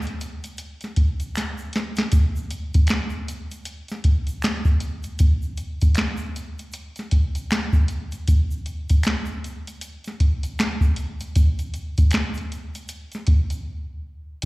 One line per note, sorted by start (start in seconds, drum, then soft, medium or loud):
0.02 shaker soft
0.07 closed hi-hat soft
0.21 closed hi-hat medium
0.21 shaker soft
0.44 closed hi-hat soft
0.44 shaker soft
0.57 closed hi-hat medium
0.57 shaker medium
0.81 snare soft
0.81 closed hi-hat soft
0.81 shaker soft
0.96 kick medium
0.96 closed hi-hat medium
1.20 closed hi-hat soft
1.20 shaker soft
1.36 finger snap medium
1.36 snare soft
1.36 closed hi-hat medium
1.36 shaker medium
1.58 shaker soft
1.73 snare medium
1.73 closed hi-hat medium
1.73 shaker soft
1.96 snare medium
1.96 closed hi-hat soft
1.96 shaker soft
2.12 kick medium
2.12 closed hi-hat medium
2.12 shaker medium
2.36 shaker medium
2.50 closed hi-hat medium
2.50 shaker soft
2.74 kick medium
2.74 closed hi-hat soft
2.74 shaker soft
2.87 finger snap medium
2.87 snare loud
2.87 closed hi-hat medium
2.87 shaker medium
2.91 finger snap medium
3.10 shaker soft
3.28 closed hi-hat medium
3.28 shaker soft
3.51 closed hi-hat soft
3.51 shaker soft
3.65 closed hi-hat medium
3.65 shaker medium
3.88 snare soft
3.88 closed hi-hat soft
3.88 shaker soft
4.04 kick medium
4.04 closed hi-hat medium
4.27 closed hi-hat soft
4.27 shaker soft
4.42 finger snap medium
4.42 snare loud
4.42 closed hi-hat medium
4.42 shaker medium
4.45 finger snap medium
4.65 kick medium
4.65 shaker soft
4.80 closed hi-hat medium
4.80 shaker soft
5.03 closed hi-hat soft
5.03 shaker soft
5.19 kick loud
5.19 closed hi-hat medium
5.19 shaker medium
5.42 shaker medium
5.57 closed hi-hat medium
5.57 shaker soft
5.81 kick medium
5.81 closed hi-hat soft
5.81 shaker soft
5.95 finger snap medium
5.95 snare loud
5.95 closed hi-hat medium
5.95 shaker medium
5.99 finger snap medium
6.17 shaker soft
6.36 closed hi-hat medium
6.36 shaker soft
6.59 closed hi-hat soft
6.59 shaker soft
6.72 closed hi-hat medium
6.72 shaker medium
6.96 snare soft
6.96 closed hi-hat soft
6.96 shaker soft
7.11 kick medium
7.11 closed hi-hat medium
7.35 closed hi-hat soft
7.35 shaker soft
7.51 finger snap medium
7.51 snare loud
7.51 closed hi-hat medium
7.51 shaker medium
7.53 finger snap medium
7.73 kick medium
7.73 shaker soft
7.88 closed hi-hat medium
7.88 shaker soft
8.12 closed hi-hat soft
8.12 shaker soft
8.28 kick medium
8.28 closed hi-hat medium
8.28 shaker medium
8.51 shaker medium
8.66 closed hi-hat medium
8.66 shaker soft
8.89 kick medium
8.89 closed hi-hat medium
8.89 shaker soft
9.03 finger snap medium
9.03 snare loud
9.03 closed hi-hat medium
9.03 shaker medium
9.08 finger snap medium
9.26 shaker soft
9.44 closed hi-hat medium
9.44 shaker soft
9.67 closed hi-hat soft
9.67 shaker soft
9.81 closed hi-hat medium
9.81 shaker medium
10.04 snare soft
10.04 closed hi-hat soft
10.04 shaker soft
10.20 kick medium
10.20 closed hi-hat medium
10.43 closed hi-hat soft
10.43 shaker soft
10.59 finger snap medium
10.59 snare loud
10.59 closed hi-hat medium
10.59 shaker medium
10.61 finger snap medium
10.81 kick medium
10.81 shaker soft
10.96 closed hi-hat medium
10.96 shaker soft
11.20 closed hi-hat soft
11.20 shaker soft
11.36 kick loud
11.36 closed hi-hat medium
11.36 shaker medium
11.59 closed hi-hat soft
11.59 shaker soft
11.74 closed hi-hat medium
11.74 shaker soft
11.98 kick medium
11.98 closed hi-hat medium
11.98 shaker soft
12.11 finger snap medium
12.11 snare loud
12.11 closed hi-hat medium
12.11 shaker medium
12.15 finger snap medium
12.34 closed hi-hat soft
12.34 shaker soft
12.52 closed hi-hat medium
12.52 shaker soft
12.75 closed hi-hat soft
12.75 shaker soft
12.88 closed hi-hat medium
12.88 shaker medium
13.12 snare soft
13.12 closed hi-hat soft
13.12 shaker soft
13.27 kick medium
13.27 closed hi-hat medium
13.50 closed hi-hat soft
13.50 shaker soft
14.42 closed hi-hat medium